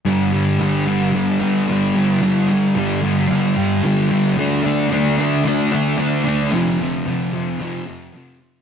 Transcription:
X:1
M:4/4
L:1/8
Q:1/4=111
K:Ddor
V:1 name="Distorted electric guitar" clef=bass
[G,,D,G,] [D,G,] [G,,D,G,] [D,G,] [G,,D,G,] [D,G,] [G,,D,G,] [D,G,] | [G,,D,G,] [D,G,] [G,,D,G,] [D,G,] [G,,D,G,] [D,G,] [G,,D,G,] [D,G,] | [D,A,D] [A,D] [D,A,D] [A,D] [D,A,D] [A,D] [D,A,D] [A,D] | [F,,C,F,] [C,F,] [F,,C,F,] [C,F,] [F,,C,F,] [C,F,] [F,,C,F,] [C,F,] |]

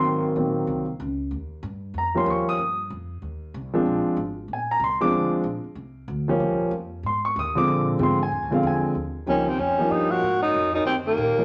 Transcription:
X:1
M:4/4
L:1/8
Q:"Swing" 1/4=189
K:Bbdor
V:1 name="Tenor saxophone"
z8 | z8 | z8 | z8 |
z8 | z8 | z8 | z2 D C D2 E _G- |
_G E2 E C B,3 |]
V:2 name="Grand piano"
c' z6 z | z4 b c' d' e'- | e' z6 z | z4 a b c' =d'- |
=d' z6 z | z4 c' d' e' =d'- | =d' z c' a2 f a z | z8 |
z8 |]
V:3 name="Grand piano" clef=bass
[E,_G,B,C]2 [E,G,B,C]3 z3 | z4 z [F,G,B,D]3 | z6 z [F,A,C=D]- | [F,A,C=D]2 z4 z [F,A,CD]- |
[F,A,C=D]2 z4 z [F,G,B,_D]- | [F,G,B,D]2 z4 z [=D,F,A,C]- | [=D,F,A,C]2 [D,F,A,C] z2 [D,F,A,C]3 | z2 [F,G,B,DE] z2 [F,G,B,DE]3 |
z6 z [F,G,B,DE] |]
V:4 name="Baritone saxophone" clef=bass
z8 | z8 | z8 | z8 |
z8 | z8 | z8 | z2 F,, E,, F,,2 G,, B,,- |
B,, _G,,2 G,, E,, E,,3 |]
V:5 name="Upright bass" clef=bass
A,,,2 B,,,2 C,,2 D,,2 | E,,2 G,,2 F,,2 E,,2 | G,,2 F,,2 E,,2 C,,2 | B,,, z A,,,2 B,,,2 C,,2 |
=D,, z B,,, z C,,2 D,,2 | (3E,, D,, B,,, F,,2 A,,2 E,,2 | B,,2 A,,2 (3F,, =D,, B,,, _F,,2 | E,,2 D,,2 F,,2 G,,2 |
A,,2 F,,2 _G,,2 B,,2 |]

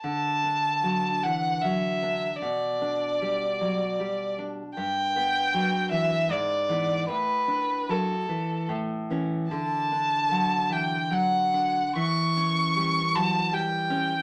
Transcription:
X:1
M:3/4
L:1/8
Q:1/4=76
K:D
V:1 name="Violin"
a3 f e2 | d4- d z | g3 e d2 | B2 A2 z2 |
a3 g f2 | c'3 a g2 |]
V:2 name="Nylon-string guitar" clef=bass
D, D F, E, F, D | B,, D G, F, G, D | G,, B, F, E, ^G,, [E,B,] | A,, D F, E, A,, [E,C] |
D, D F, E, F, D | E, C G, F, G, C |]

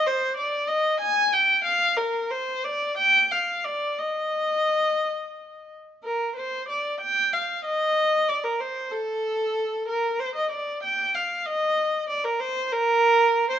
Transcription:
X:1
M:6/8
L:1/16
Q:3/8=63
K:Eb
V:1 name="Viola"
c2 d2 e2 a2 g2 f2 | B2 c2 d2 g2 f2 d2 | e8- e2 z2 | [K:Bb] B2 c2 d2 g2 f2 e2- |
e2 d B c2 A6 | B2 c e d2 g2 f2 e2- | e2 d B c2 B4- B c |]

